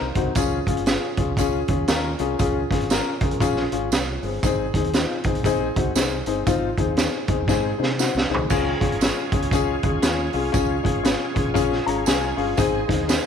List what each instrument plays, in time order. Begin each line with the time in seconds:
0.01 fingered electric bass C2
0.15 fingered electric bass C2, upright piano C4 D#4 F#4, kick, closed hi-hat
0.35 fingered electric bass C#2, upright piano C#4 F4 G#4, kick, closed hi-hat, tambourine
0.67 fingered electric bass G#1, upright piano C#4 F4 G#4, kick, closed hi-hat
0.77 closed hi-hat
0.86 upright piano C#4 F4 G#4, snare, closed hi-hat, tambourine
1.17 fingered electric bass C2, upright piano C#4 F4 G#4, kick, closed hi-hat
1.27 fingered electric bass C#2
1.37 upright piano C#4 F4 G#4, kick, closed hi-hat, tambourine
1.68 fingered electric bass D#2, upright piano C#4 F4 G#4, kick, closed hi-hat
1.88 fingered electric bass D#2, upright piano C#4 F4 A#4, snare, closed hi-hat, tambourine
2.19 fingered electric bass C2, upright piano C#4 F4 G#4, closed hi-hat
2.39 fingered electric bass C#2, upright piano C#4 F4 G#4, kick, closed hi-hat, tambourine
2.70 fingered electric bass G#1, upright piano C#4 F4 G#4, kick, snare, closed hi-hat
2.81 closed hi-hat
2.90 upright piano C#4 F4 A#4, snare, closed hi-hat, tambourine
3.21 fingered electric bass C2, upright piano C#4 F4 G#4, kick, closed hi-hat
3.31 fingered electric bass A#1, closed hi-hat
3.40 upright piano C#4 F4 G#4, kick, closed hi-hat, tambourine
3.56 snare
3.72 fingered electric bass G#1, upright piano C#4 F4 G#4, closed hi-hat
3.91 fingered electric bass C2, upright piano F4 C#5, snare, closed hi-hat, tambourine
4.23 fingered electric bass G1, upright piano C4 G#4, open hi-hat
4.43 fingered electric bass G#1, upright piano C4 D#4 G#4, kick, closed hi-hat, tambourine
4.74 fingered electric bass D#2, upright piano C4 D#4 G#4, kick, closed hi-hat
4.84 closed hi-hat
4.93 upright piano C4 D#4 F4, snare, closed hi-hat, tambourine
5.24 fingered electric bass G#1, upright piano C4 D#4 G#4, kick, closed hi-hat
5.35 fingered electric bass A#1, closed hi-hat
5.44 upright piano C4 D#4 G#4, kick, closed hi-hat, tambourine
5.76 fingered electric bass C2, upright piano C4 D#4 F#4, kick, closed hi-hat
5.95 fingered electric bass C2, upright piano C4 D#4 G#4, snare, closed hi-hat, tambourine
6.26 fingered electric bass G1, upright piano C4 D#4 G#4, closed hi-hat
6.47 fingered electric bass G#1, upright piano C4 D#4 F4, kick, closed hi-hat, tambourine
6.77 fingered electric bass D#2, upright piano C4 D#4 G#4, kick, closed hi-hat
6.97 upright piano C4 D#4 G#4, snare, closed hi-hat, tambourine
7.28 fingered electric bass F2, upright piano C4 D#4 G#4, kick, closed hi-hat
7.38 fingered electric bass D#2
7.48 fingered electric bass G#2, upright piano C4 D#4 G#4, kick, snare, tambourine
7.78 fingered electric bass C3, upright piano C4 D#4 G#4
7.83 snare
7.99 upright piano C4 D#4 F#4, snare, tambourine
8.15 fingered electric bass C2, snare
8.30 fingered electric bass C2, upright piano C4 D#4 G#4
8.34 floor tom
8.50 fingered electric bass C#2, tonewheel organ G#3 C#4 F4 G#4, upright piano C#4 F4 G#4, kick, crash, tambourine
8.81 fingered electric bass G#1, upright piano C#4 F4 G#4, kick, closed hi-hat
8.92 closed hi-hat
9.01 upright piano C#4 F4 G#4, snare, closed hi-hat, tambourine
9.32 fingered electric bass C2, upright piano C#4 F4 G#4, kick, closed hi-hat
9.42 fingered electric bass C#2, closed hi-hat
9.51 upright piano C#4 F4 G#4, kick, closed hi-hat, tambourine
9.83 fingered electric bass D#2, upright piano C#4 F4 G#4, kick, closed hi-hat
10.02 fingered electric bass D#2, upright piano C#4 F4 G#4, snare, closed hi-hat, tambourine
10.33 fingered electric bass C2, upright piano C#4 F4 G#4, open hi-hat
10.52 fingered electric bass C#2, upright piano C#4 F4 G#4, kick, closed hi-hat, tambourine
10.83 fingered electric bass G#1, upright piano C#4 F4 G#4, kick, closed hi-hat
11.03 upright piano C#4 F4 G#4, snare, closed hi-hat, tambourine
11.34 fingered electric bass C2, upright piano C#4 F4 G#4, kick, closed hi-hat
11.45 fingered electric bass A#1
11.54 upright piano C#4 F4 G#4, kick, closed hi-hat, tambourine
11.72 snare
11.86 fingered electric bass G#1, upright piano C#4 F4 G#4 A#5, closed hi-hat
12.06 fingered electric bass C2, upright piano C#4 F4 G#4 G#5, snare, closed hi-hat, tambourine
12.37 fingered electric bass G1, upright piano C#4 F4 G#4 F5, open hi-hat
12.57 fingered electric bass G#1, upright piano C4 D#4 G#4, tonewheel organ C4 D#4, kick, closed hi-hat, tambourine
12.88 fingered electric bass D#2, upright piano C4 D#4 G#4, kick, snare, closed hi-hat
13.08 upright piano C4 D#4 G#4, snare, closed hi-hat, tambourine